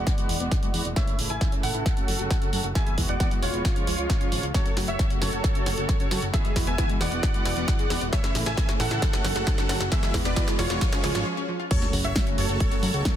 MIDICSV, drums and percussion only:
0, 0, Header, 1, 2, 480
1, 0, Start_track
1, 0, Key_signature, 3, "minor"
1, 0, Tempo, 447761
1, 1031, Time_signature, 4, 2, 24, 8
1, 14110, End_track
2, 0, Start_track
2, 0, Title_t, "Drums"
2, 72, Note_on_c, 9, 36, 119
2, 72, Note_on_c, 9, 38, 55
2, 72, Note_on_c, 9, 42, 65
2, 179, Note_off_c, 9, 36, 0
2, 179, Note_off_c, 9, 38, 0
2, 179, Note_off_c, 9, 42, 0
2, 192, Note_on_c, 9, 42, 40
2, 299, Note_off_c, 9, 42, 0
2, 313, Note_on_c, 9, 46, 110
2, 420, Note_off_c, 9, 46, 0
2, 433, Note_on_c, 9, 42, 41
2, 540, Note_off_c, 9, 42, 0
2, 552, Note_on_c, 9, 36, 122
2, 552, Note_on_c, 9, 38, 56
2, 552, Note_on_c, 9, 42, 65
2, 659, Note_off_c, 9, 36, 0
2, 659, Note_off_c, 9, 38, 0
2, 659, Note_off_c, 9, 42, 0
2, 672, Note_on_c, 9, 42, 38
2, 780, Note_off_c, 9, 42, 0
2, 792, Note_on_c, 9, 46, 113
2, 900, Note_off_c, 9, 46, 0
2, 913, Note_on_c, 9, 42, 41
2, 1020, Note_off_c, 9, 42, 0
2, 1032, Note_on_c, 9, 36, 124
2, 1033, Note_on_c, 9, 38, 58
2, 1033, Note_on_c, 9, 42, 64
2, 1139, Note_off_c, 9, 36, 0
2, 1140, Note_off_c, 9, 38, 0
2, 1140, Note_off_c, 9, 42, 0
2, 1153, Note_on_c, 9, 42, 38
2, 1260, Note_off_c, 9, 42, 0
2, 1273, Note_on_c, 9, 46, 112
2, 1380, Note_off_c, 9, 46, 0
2, 1392, Note_on_c, 9, 42, 38
2, 1500, Note_off_c, 9, 42, 0
2, 1512, Note_on_c, 9, 36, 123
2, 1512, Note_on_c, 9, 38, 58
2, 1512, Note_on_c, 9, 42, 61
2, 1619, Note_off_c, 9, 36, 0
2, 1619, Note_off_c, 9, 38, 0
2, 1619, Note_off_c, 9, 42, 0
2, 1632, Note_on_c, 9, 42, 38
2, 1739, Note_off_c, 9, 42, 0
2, 1751, Note_on_c, 9, 46, 111
2, 1859, Note_off_c, 9, 46, 0
2, 1872, Note_on_c, 9, 42, 36
2, 1979, Note_off_c, 9, 42, 0
2, 1992, Note_on_c, 9, 36, 127
2, 1992, Note_on_c, 9, 38, 61
2, 1992, Note_on_c, 9, 42, 63
2, 2099, Note_off_c, 9, 36, 0
2, 2099, Note_off_c, 9, 38, 0
2, 2099, Note_off_c, 9, 42, 0
2, 2111, Note_on_c, 9, 42, 40
2, 2218, Note_off_c, 9, 42, 0
2, 2231, Note_on_c, 9, 46, 116
2, 2338, Note_off_c, 9, 46, 0
2, 2352, Note_on_c, 9, 42, 38
2, 2459, Note_off_c, 9, 42, 0
2, 2471, Note_on_c, 9, 38, 62
2, 2471, Note_on_c, 9, 42, 61
2, 2472, Note_on_c, 9, 36, 123
2, 2578, Note_off_c, 9, 38, 0
2, 2578, Note_off_c, 9, 42, 0
2, 2579, Note_off_c, 9, 36, 0
2, 2591, Note_on_c, 9, 42, 36
2, 2699, Note_off_c, 9, 42, 0
2, 2711, Note_on_c, 9, 46, 113
2, 2819, Note_off_c, 9, 46, 0
2, 2831, Note_on_c, 9, 42, 36
2, 2938, Note_off_c, 9, 42, 0
2, 2951, Note_on_c, 9, 36, 120
2, 2952, Note_on_c, 9, 38, 67
2, 2952, Note_on_c, 9, 42, 63
2, 3059, Note_off_c, 9, 36, 0
2, 3059, Note_off_c, 9, 38, 0
2, 3059, Note_off_c, 9, 42, 0
2, 3072, Note_on_c, 9, 42, 36
2, 3179, Note_off_c, 9, 42, 0
2, 3191, Note_on_c, 9, 46, 110
2, 3192, Note_on_c, 9, 36, 64
2, 3299, Note_off_c, 9, 36, 0
2, 3299, Note_off_c, 9, 46, 0
2, 3312, Note_on_c, 9, 42, 36
2, 3419, Note_off_c, 9, 42, 0
2, 3431, Note_on_c, 9, 38, 64
2, 3431, Note_on_c, 9, 42, 61
2, 3432, Note_on_c, 9, 36, 123
2, 3539, Note_off_c, 9, 36, 0
2, 3539, Note_off_c, 9, 38, 0
2, 3539, Note_off_c, 9, 42, 0
2, 3552, Note_on_c, 9, 42, 37
2, 3659, Note_off_c, 9, 42, 0
2, 3672, Note_on_c, 9, 46, 110
2, 3779, Note_off_c, 9, 46, 0
2, 3792, Note_on_c, 9, 42, 35
2, 3899, Note_off_c, 9, 42, 0
2, 3911, Note_on_c, 9, 36, 122
2, 3912, Note_on_c, 9, 38, 69
2, 3912, Note_on_c, 9, 42, 64
2, 4019, Note_off_c, 9, 36, 0
2, 4019, Note_off_c, 9, 38, 0
2, 4019, Note_off_c, 9, 42, 0
2, 4032, Note_on_c, 9, 42, 38
2, 4139, Note_off_c, 9, 42, 0
2, 4152, Note_on_c, 9, 46, 109
2, 4259, Note_off_c, 9, 46, 0
2, 4272, Note_on_c, 9, 42, 37
2, 4379, Note_off_c, 9, 42, 0
2, 4392, Note_on_c, 9, 36, 119
2, 4392, Note_on_c, 9, 38, 73
2, 4392, Note_on_c, 9, 42, 62
2, 4499, Note_off_c, 9, 36, 0
2, 4499, Note_off_c, 9, 38, 0
2, 4499, Note_off_c, 9, 42, 0
2, 4512, Note_on_c, 9, 42, 36
2, 4619, Note_off_c, 9, 42, 0
2, 4631, Note_on_c, 9, 46, 111
2, 4738, Note_off_c, 9, 46, 0
2, 4752, Note_on_c, 9, 42, 38
2, 4859, Note_off_c, 9, 42, 0
2, 4872, Note_on_c, 9, 36, 121
2, 4872, Note_on_c, 9, 38, 76
2, 4872, Note_on_c, 9, 42, 62
2, 4979, Note_off_c, 9, 36, 0
2, 4979, Note_off_c, 9, 38, 0
2, 4979, Note_off_c, 9, 42, 0
2, 4991, Note_on_c, 9, 42, 37
2, 5098, Note_off_c, 9, 42, 0
2, 5111, Note_on_c, 9, 38, 78
2, 5111, Note_on_c, 9, 46, 105
2, 5218, Note_off_c, 9, 38, 0
2, 5218, Note_off_c, 9, 46, 0
2, 5231, Note_on_c, 9, 42, 37
2, 5338, Note_off_c, 9, 42, 0
2, 5352, Note_on_c, 9, 36, 120
2, 5352, Note_on_c, 9, 38, 71
2, 5352, Note_on_c, 9, 42, 61
2, 5459, Note_off_c, 9, 36, 0
2, 5459, Note_off_c, 9, 38, 0
2, 5459, Note_off_c, 9, 42, 0
2, 5471, Note_on_c, 9, 42, 38
2, 5579, Note_off_c, 9, 42, 0
2, 5591, Note_on_c, 9, 38, 80
2, 5591, Note_on_c, 9, 46, 104
2, 5699, Note_off_c, 9, 38, 0
2, 5699, Note_off_c, 9, 46, 0
2, 5711, Note_on_c, 9, 42, 36
2, 5819, Note_off_c, 9, 42, 0
2, 5831, Note_on_c, 9, 38, 76
2, 5831, Note_on_c, 9, 42, 62
2, 5832, Note_on_c, 9, 36, 116
2, 5939, Note_off_c, 9, 36, 0
2, 5939, Note_off_c, 9, 38, 0
2, 5939, Note_off_c, 9, 42, 0
2, 5952, Note_on_c, 9, 42, 40
2, 6059, Note_off_c, 9, 42, 0
2, 6071, Note_on_c, 9, 38, 77
2, 6071, Note_on_c, 9, 46, 113
2, 6178, Note_off_c, 9, 38, 0
2, 6178, Note_off_c, 9, 46, 0
2, 6192, Note_on_c, 9, 42, 39
2, 6299, Note_off_c, 9, 42, 0
2, 6312, Note_on_c, 9, 36, 122
2, 6312, Note_on_c, 9, 38, 81
2, 6312, Note_on_c, 9, 42, 59
2, 6419, Note_off_c, 9, 36, 0
2, 6419, Note_off_c, 9, 38, 0
2, 6419, Note_off_c, 9, 42, 0
2, 6432, Note_on_c, 9, 42, 37
2, 6539, Note_off_c, 9, 42, 0
2, 6552, Note_on_c, 9, 38, 85
2, 6552, Note_on_c, 9, 46, 111
2, 6659, Note_off_c, 9, 38, 0
2, 6659, Note_off_c, 9, 46, 0
2, 6672, Note_on_c, 9, 42, 38
2, 6779, Note_off_c, 9, 42, 0
2, 6792, Note_on_c, 9, 36, 115
2, 6792, Note_on_c, 9, 38, 85
2, 6792, Note_on_c, 9, 42, 67
2, 6899, Note_off_c, 9, 36, 0
2, 6900, Note_off_c, 9, 38, 0
2, 6900, Note_off_c, 9, 42, 0
2, 6912, Note_on_c, 9, 42, 37
2, 7019, Note_off_c, 9, 42, 0
2, 7032, Note_on_c, 9, 36, 60
2, 7032, Note_on_c, 9, 38, 87
2, 7032, Note_on_c, 9, 46, 104
2, 7139, Note_off_c, 9, 36, 0
2, 7139, Note_off_c, 9, 38, 0
2, 7139, Note_off_c, 9, 46, 0
2, 7152, Note_on_c, 9, 42, 38
2, 7259, Note_off_c, 9, 42, 0
2, 7272, Note_on_c, 9, 36, 117
2, 7272, Note_on_c, 9, 38, 81
2, 7272, Note_on_c, 9, 42, 64
2, 7379, Note_off_c, 9, 36, 0
2, 7379, Note_off_c, 9, 38, 0
2, 7379, Note_off_c, 9, 42, 0
2, 7392, Note_on_c, 9, 42, 39
2, 7499, Note_off_c, 9, 42, 0
2, 7512, Note_on_c, 9, 38, 85
2, 7512, Note_on_c, 9, 46, 100
2, 7619, Note_off_c, 9, 38, 0
2, 7619, Note_off_c, 9, 46, 0
2, 7632, Note_on_c, 9, 42, 37
2, 7739, Note_off_c, 9, 42, 0
2, 7751, Note_on_c, 9, 38, 85
2, 7751, Note_on_c, 9, 42, 66
2, 7752, Note_on_c, 9, 36, 113
2, 7858, Note_off_c, 9, 38, 0
2, 7858, Note_off_c, 9, 42, 0
2, 7859, Note_off_c, 9, 36, 0
2, 7871, Note_on_c, 9, 42, 41
2, 7978, Note_off_c, 9, 42, 0
2, 7991, Note_on_c, 9, 38, 93
2, 7991, Note_on_c, 9, 46, 108
2, 8099, Note_off_c, 9, 38, 0
2, 8099, Note_off_c, 9, 46, 0
2, 8112, Note_on_c, 9, 42, 39
2, 8219, Note_off_c, 9, 42, 0
2, 8232, Note_on_c, 9, 36, 116
2, 8232, Note_on_c, 9, 38, 85
2, 8232, Note_on_c, 9, 42, 64
2, 8339, Note_off_c, 9, 36, 0
2, 8339, Note_off_c, 9, 38, 0
2, 8339, Note_off_c, 9, 42, 0
2, 8352, Note_on_c, 9, 42, 38
2, 8459, Note_off_c, 9, 42, 0
2, 8472, Note_on_c, 9, 38, 92
2, 8472, Note_on_c, 9, 46, 109
2, 8579, Note_off_c, 9, 38, 0
2, 8579, Note_off_c, 9, 46, 0
2, 8592, Note_on_c, 9, 42, 40
2, 8699, Note_off_c, 9, 42, 0
2, 8712, Note_on_c, 9, 36, 116
2, 8712, Note_on_c, 9, 38, 90
2, 8712, Note_on_c, 9, 42, 69
2, 8819, Note_off_c, 9, 36, 0
2, 8819, Note_off_c, 9, 38, 0
2, 8819, Note_off_c, 9, 42, 0
2, 8832, Note_on_c, 9, 38, 81
2, 8832, Note_on_c, 9, 42, 41
2, 8939, Note_off_c, 9, 38, 0
2, 8939, Note_off_c, 9, 42, 0
2, 8952, Note_on_c, 9, 38, 94
2, 8952, Note_on_c, 9, 46, 104
2, 9059, Note_off_c, 9, 38, 0
2, 9059, Note_off_c, 9, 46, 0
2, 9072, Note_on_c, 9, 38, 81
2, 9072, Note_on_c, 9, 42, 40
2, 9179, Note_off_c, 9, 38, 0
2, 9179, Note_off_c, 9, 42, 0
2, 9192, Note_on_c, 9, 36, 118
2, 9192, Note_on_c, 9, 38, 93
2, 9192, Note_on_c, 9, 42, 64
2, 9299, Note_off_c, 9, 36, 0
2, 9299, Note_off_c, 9, 38, 0
2, 9299, Note_off_c, 9, 42, 0
2, 9312, Note_on_c, 9, 38, 81
2, 9312, Note_on_c, 9, 42, 41
2, 9419, Note_off_c, 9, 38, 0
2, 9419, Note_off_c, 9, 42, 0
2, 9432, Note_on_c, 9, 38, 92
2, 9432, Note_on_c, 9, 46, 105
2, 9539, Note_off_c, 9, 38, 0
2, 9539, Note_off_c, 9, 46, 0
2, 9551, Note_on_c, 9, 38, 79
2, 9551, Note_on_c, 9, 42, 40
2, 9659, Note_off_c, 9, 38, 0
2, 9659, Note_off_c, 9, 42, 0
2, 9672, Note_on_c, 9, 36, 114
2, 9672, Note_on_c, 9, 38, 96
2, 9672, Note_on_c, 9, 42, 67
2, 9779, Note_off_c, 9, 36, 0
2, 9779, Note_off_c, 9, 38, 0
2, 9779, Note_off_c, 9, 42, 0
2, 9791, Note_on_c, 9, 38, 86
2, 9791, Note_on_c, 9, 42, 43
2, 9898, Note_off_c, 9, 38, 0
2, 9898, Note_off_c, 9, 42, 0
2, 9911, Note_on_c, 9, 38, 101
2, 9911, Note_on_c, 9, 46, 106
2, 10018, Note_off_c, 9, 38, 0
2, 10018, Note_off_c, 9, 46, 0
2, 10031, Note_on_c, 9, 38, 86
2, 10031, Note_on_c, 9, 42, 41
2, 10138, Note_off_c, 9, 38, 0
2, 10138, Note_off_c, 9, 42, 0
2, 10151, Note_on_c, 9, 38, 101
2, 10151, Note_on_c, 9, 42, 68
2, 10152, Note_on_c, 9, 36, 113
2, 10258, Note_off_c, 9, 38, 0
2, 10258, Note_off_c, 9, 42, 0
2, 10259, Note_off_c, 9, 36, 0
2, 10271, Note_on_c, 9, 38, 85
2, 10271, Note_on_c, 9, 42, 40
2, 10378, Note_off_c, 9, 38, 0
2, 10378, Note_off_c, 9, 42, 0
2, 10390, Note_on_c, 9, 38, 105
2, 10390, Note_on_c, 9, 46, 107
2, 10498, Note_off_c, 9, 38, 0
2, 10498, Note_off_c, 9, 46, 0
2, 10511, Note_on_c, 9, 38, 88
2, 10511, Note_on_c, 9, 42, 41
2, 10618, Note_off_c, 9, 38, 0
2, 10618, Note_off_c, 9, 42, 0
2, 10631, Note_on_c, 9, 38, 101
2, 10631, Note_on_c, 9, 42, 71
2, 10632, Note_on_c, 9, 36, 118
2, 10738, Note_off_c, 9, 38, 0
2, 10738, Note_off_c, 9, 42, 0
2, 10739, Note_off_c, 9, 36, 0
2, 10751, Note_on_c, 9, 38, 88
2, 10751, Note_on_c, 9, 42, 39
2, 10859, Note_off_c, 9, 38, 0
2, 10859, Note_off_c, 9, 42, 0
2, 10871, Note_on_c, 9, 36, 61
2, 10871, Note_on_c, 9, 38, 105
2, 10871, Note_on_c, 9, 46, 105
2, 10978, Note_off_c, 9, 38, 0
2, 10978, Note_off_c, 9, 46, 0
2, 10979, Note_off_c, 9, 36, 0
2, 10991, Note_on_c, 9, 38, 88
2, 10991, Note_on_c, 9, 42, 42
2, 11098, Note_off_c, 9, 38, 0
2, 11098, Note_off_c, 9, 42, 0
2, 11110, Note_on_c, 9, 38, 103
2, 11110, Note_on_c, 9, 42, 71
2, 11112, Note_on_c, 9, 36, 119
2, 11218, Note_off_c, 9, 38, 0
2, 11218, Note_off_c, 9, 42, 0
2, 11219, Note_off_c, 9, 36, 0
2, 11231, Note_on_c, 9, 38, 98
2, 11231, Note_on_c, 9, 42, 43
2, 11338, Note_off_c, 9, 38, 0
2, 11338, Note_off_c, 9, 42, 0
2, 11351, Note_on_c, 9, 38, 109
2, 11351, Note_on_c, 9, 46, 106
2, 11458, Note_off_c, 9, 38, 0
2, 11458, Note_off_c, 9, 46, 0
2, 11471, Note_on_c, 9, 38, 90
2, 11471, Note_on_c, 9, 42, 42
2, 11578, Note_off_c, 9, 38, 0
2, 11578, Note_off_c, 9, 42, 0
2, 11591, Note_on_c, 9, 38, 108
2, 11591, Note_on_c, 9, 42, 74
2, 11592, Note_on_c, 9, 36, 114
2, 11699, Note_off_c, 9, 36, 0
2, 11699, Note_off_c, 9, 38, 0
2, 11699, Note_off_c, 9, 42, 0
2, 11712, Note_on_c, 9, 38, 97
2, 11712, Note_on_c, 9, 42, 44
2, 11819, Note_off_c, 9, 38, 0
2, 11819, Note_off_c, 9, 42, 0
2, 11832, Note_on_c, 9, 38, 112
2, 11832, Note_on_c, 9, 46, 103
2, 11939, Note_off_c, 9, 38, 0
2, 11939, Note_off_c, 9, 46, 0
2, 11952, Note_on_c, 9, 38, 95
2, 11952, Note_on_c, 9, 42, 44
2, 12059, Note_off_c, 9, 38, 0
2, 12059, Note_off_c, 9, 42, 0
2, 12551, Note_on_c, 9, 42, 71
2, 12551, Note_on_c, 9, 49, 107
2, 12552, Note_on_c, 9, 36, 127
2, 12659, Note_off_c, 9, 36, 0
2, 12659, Note_off_c, 9, 42, 0
2, 12659, Note_off_c, 9, 49, 0
2, 12671, Note_on_c, 9, 38, 38
2, 12671, Note_on_c, 9, 42, 40
2, 12778, Note_off_c, 9, 38, 0
2, 12778, Note_off_c, 9, 42, 0
2, 12791, Note_on_c, 9, 46, 111
2, 12899, Note_off_c, 9, 46, 0
2, 12912, Note_on_c, 9, 42, 41
2, 13019, Note_off_c, 9, 42, 0
2, 13031, Note_on_c, 9, 38, 127
2, 13031, Note_on_c, 9, 42, 71
2, 13032, Note_on_c, 9, 36, 123
2, 13139, Note_off_c, 9, 36, 0
2, 13139, Note_off_c, 9, 38, 0
2, 13139, Note_off_c, 9, 42, 0
2, 13152, Note_on_c, 9, 42, 43
2, 13259, Note_off_c, 9, 42, 0
2, 13271, Note_on_c, 9, 46, 103
2, 13379, Note_off_c, 9, 46, 0
2, 13391, Note_on_c, 9, 42, 38
2, 13498, Note_off_c, 9, 42, 0
2, 13511, Note_on_c, 9, 42, 72
2, 13512, Note_on_c, 9, 36, 119
2, 13618, Note_off_c, 9, 42, 0
2, 13619, Note_off_c, 9, 36, 0
2, 13631, Note_on_c, 9, 42, 42
2, 13739, Note_off_c, 9, 42, 0
2, 13751, Note_on_c, 9, 46, 114
2, 13859, Note_off_c, 9, 46, 0
2, 13872, Note_on_c, 9, 42, 41
2, 13979, Note_off_c, 9, 42, 0
2, 13992, Note_on_c, 9, 36, 120
2, 13992, Note_on_c, 9, 38, 126
2, 13992, Note_on_c, 9, 42, 67
2, 14099, Note_off_c, 9, 36, 0
2, 14099, Note_off_c, 9, 38, 0
2, 14099, Note_off_c, 9, 42, 0
2, 14110, End_track
0, 0, End_of_file